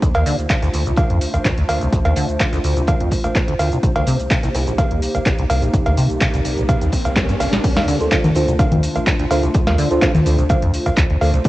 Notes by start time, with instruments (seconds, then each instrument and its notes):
0.02 sub bass D2, acid bass D2, ambient pad A3 D4 F4 C5, kick, closed hi-hat, shaker
0.14 acid bass D#2, closed hi-hat, cowbell
0.26 acid bass D3, closed hi-hat, open hi-hat, shaker
0.38 sub bass D2, closed hi-hat, shaker
0.50 acid bass D3, kick, snare, clap, closed hi-hat, cowbell, shaker
0.62 acid bass D2, snare, closed hi-hat, shaker
0.73 sub bass D2, acid bass D2, snare, closed hi-hat, open hi-hat, shaker
0.86 acid bass C2, closed hi-hat, shaker
0.96 acid bass D3, kick, closed hi-hat, cowbell, shaker
1.10 sub bass D2, acid bass F2, closed hi-hat
1.21 closed hi-hat, open hi-hat, shaker
1.34 sub bass A1, acid bass D2, closed hi-hat, cowbell, shaker
1.45 acid bass D2, kick, snare, clap, closed hi-hat, shaker
1.58 acid bass D2, closed hi-hat
1.69 sub bass D2, acid bass D2, closed hi-hat, open hi-hat, cowbell, shaker
1.81 acid bass C2, closed hi-hat, shaker
1.93 sub bass D2, acid bass D2, kick, closed hi-hat, shaker
2.05 acid bass D#2, closed hi-hat, cowbell
2.16 acid bass D3, closed hi-hat, open hi-hat, shaker
2.29 sub bass D2, closed hi-hat, shaker
2.40 acid bass D3, kick, snare, clap, closed hi-hat, cowbell, shaker
2.53 acid bass D2, snare, closed hi-hat, shaker
2.64 sub bass D2, acid bass D2, closed hi-hat, open hi-hat, shaker
2.77 acid bass C2, closed hi-hat, shaker
2.87 acid bass D3, kick, closed hi-hat, cowbell, shaker
3.00 sub bass D2, acid bass F2, closed hi-hat
3.11 kick, closed hi-hat, open hi-hat, shaker
3.24 sub bass A1, acid bass D2, closed hi-hat, cowbell, shaker
3.35 acid bass D2, kick, snare, clap, closed hi-hat, shaker
3.48 acid bass D2, closed hi-hat
3.59 sub bass D2, acid bass D2, closed hi-hat, open hi-hat, cowbell, shaker
3.72 acid bass C2, closed hi-hat, shaker
3.83 sub bass C2, acid bass C2, ambient pad A#3 D#4 G4, kick, closed hi-hat, riser, shaker
3.96 acid bass D2, closed hi-hat, cowbell
4.07 acid bass C3, closed hi-hat, open hi-hat, shaker
4.19 sub bass C2, closed hi-hat, shaker
4.30 acid bass C3, kick, snare, clap, closed hi-hat, cowbell, shaker
4.43 acid bass C2, snare, closed hi-hat, shaker
4.54 sub bass C2, acid bass C2, snare, closed hi-hat, open hi-hat, shaker
4.67 acid bass A#1, snare, closed hi-hat, shaker
4.78 acid bass C3, kick, closed hi-hat, cowbell, shaker
4.91 sub bass C2, acid bass D#2, closed hi-hat
5.02 closed hi-hat, open hi-hat, shaker
5.15 sub bass G1, acid bass C2, closed hi-hat, cowbell, shaker
5.25 acid bass C2, kick, snare, clap, closed hi-hat, shaker
5.38 acid bass C2, closed hi-hat
5.50 sub bass C2, acid bass C2, closed hi-hat, open hi-hat, cowbell, shaker
5.62 acid bass A#1, closed hi-hat, shaker
5.74 sub bass C2, acid bass C2, ambient pad A#4, kick, closed hi-hat, shaker
5.86 acid bass D2, closed hi-hat, cowbell
5.97 acid bass C3, closed hi-hat, open hi-hat, shaker
6.10 sub bass C2, closed hi-hat, shaker
6.21 acid bass C3, kick, snare, clap, closed hi-hat, cowbell, shaker
6.33 acid bass C2, snare, closed hi-hat, shaker
6.45 sub bass C2, acid bass C2, closed hi-hat, open hi-hat, shaker
6.58 acid bass A#1, closed hi-hat, shaker
6.69 acid bass C3, kick, closed hi-hat, cowbell, shaker
6.81 sub bass C2, acid bass D#2, closed hi-hat, shaker
6.92 kick, closed hi-hat, open hi-hat, shaker
7.05 sub bass C2, acid bass C2, closed hi-hat, cowbell, shaker
7.16 acid bass C2, kick, snare, clap, closed hi-hat, shaker
7.29 acid bass G2, closed hi-hat, shaker
7.40 sub bass G1, acid bass C2, snare, closed hi-hat, open hi-hat, cowbell, shaker
7.53 acid bass A#1, snare, closed hi-hat, shaker
7.64 sub bass D2, acid bass D2, ambient pad A3 D4 F4 C5, kick, closed hi-hat, crash, shaker
7.77 acid bass D#2, snare, closed hi-hat, cowbell
7.88 acid bass D3, closed hi-hat, open hi-hat, shaker
8.00 sub bass D2, synth stab D4 F4 A4 C5, closed hi-hat, shaker
8.12 acid bass D3, synth stab D4 F4 A4, kick, snare, clap, closed hi-hat, cowbell, shaker
8.24 acid bass D2, snare, closed hi-hat, low conga, shaker
8.35 sub bass D2, acid bass D2, synth stab D4 F4 A4 C5, snare, closed hi-hat, open hi-hat, shaker
8.48 acid bass C2, closed hi-hat, shaker
8.59 acid bass D3, kick, closed hi-hat, cowbell, shaker
8.72 sub bass D2, acid bass F2, closed hi-hat, low conga
8.83 closed hi-hat, open hi-hat, shaker
8.96 sub bass A1, acid bass D2, closed hi-hat, cowbell, shaker
9.07 acid bass D2, kick, snare, clap, closed hi-hat, shaker
9.19 acid bass D2, closed hi-hat
9.31 sub bass D2, acid bass D2, synth stab D4 F4 A4 C5, closed hi-hat, open hi-hat, cowbell, shaker
9.43 acid bass C2, closed hi-hat, shaker
9.54 sub bass D2, acid bass D2, kick, closed hi-hat, shaker
9.67 acid bass D#2, snare, closed hi-hat, cowbell
9.78 acid bass D3, closed hi-hat, open hi-hat, shaker
9.91 sub bass D2, synth stab D4 F4 A4 C5, closed hi-hat, shaker
10.01 acid bass D3, synth stab D4 F4 A4 C5, kick, snare, clap, closed hi-hat, cowbell, shaker
10.15 acid bass D2, snare, closed hi-hat, low conga, shaker
10.26 sub bass D2, acid bass D2, synth stab D4 F4 A4 C5, closed hi-hat, open hi-hat, shaker
10.38 acid bass C2, closed hi-hat, shaker
10.49 acid bass D3, kick, closed hi-hat, cowbell, shaker
10.62 sub bass D2, acid bass F2, closed hi-hat
10.74 closed hi-hat, open hi-hat, shaker
10.86 sub bass A1, acid bass D2, closed hi-hat, cowbell, shaker
10.96 acid bass D2, kick, snare, clap, closed hi-hat, shaker
11.10 acid bass D2, closed hi-hat
11.21 sub bass D2, acid bass D2, synth stab D4 F4 A4 C5, closed hi-hat, open hi-hat, cowbell, shaker
11.34 acid bass C2, closed hi-hat, shaker
11.44 sub bass C2, acid bass C2, ambient pad A#3 D#4 G4, kick, closed hi-hat, shaker